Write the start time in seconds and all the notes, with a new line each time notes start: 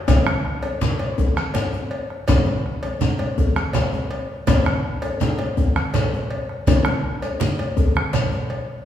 0.08 bombo rim, bombo low, cowbell, djembe slap, djembe tone, djembe bass, low conga, shekere
0.27 bombo rim, high conga
0.45 bombo rim
0.62 bombo rim, cowbell, djembe tone
0.81 djembe slap, low conga, shekere
0.99 cowbell, djembe slap
1.18 bombo low, djembe slap, djembe tone, high conga, djembe bass
1.37 bombo rim, high conga, shekere
1.54 cowbell, djembe slap, low conga, shekere
1.73 djembe tone
1.91 cowbell, djembe slap
2.10 bombo rim
2.28 bombo rim, bombo low, cowbell, djembe slap, djembe tone, low conga, djembe bass, shekere
2.46 high conga
2.66 bombo rim
2.83 bombo rim, cowbell, djembe tone
3.01 djembe slap, low conga, shekere
3.19 cowbell, djembe slap
3.38 bombo low, djembe slap, high conga, djembe tone, djembe bass
3.56 bombo rim, high conga, shekere
3.73 cowbell, djembe slap, low conga, shekere
3.93 djembe tone
4.11 cowbell, djembe slap
4.47 bombo rim, bombo low, cowbell, djembe slap, djembe tone, low conga, djembe bass, shekere
4.66 bombo rim, high conga
5.02 bombo rim, cowbell, djembe tone
5.20 djembe slap, low conga, shekere
5.39 cowbell, djembe slap
5.57 bombo low, djembe slap, djembe tone, high conga, djembe bass
5.76 bombo rim, high conga, shekere
5.94 cowbell, djembe slap, low conga, shekere
6.13 djembe tone
6.30 cowbell, djembe slap
6.49 bombo rim
6.67 bombo low, cowbell, djembe slap, djembe tone, low conga, djembe bass, shekere
6.85 bombo rim, high conga
7.22 cowbell, high conga, djembe tone, shekere
7.40 bombo rim, djembe slap, low conga, shekere
7.59 cowbell, djembe slap
7.77 bombo low, djembe slap, djembe tone, djembe bass
7.96 bombo rim, high conga
8.13 bombo rim, cowbell, djembe slap, low conga, shekere
8.32 djembe tone
8.49 cowbell, djembe slap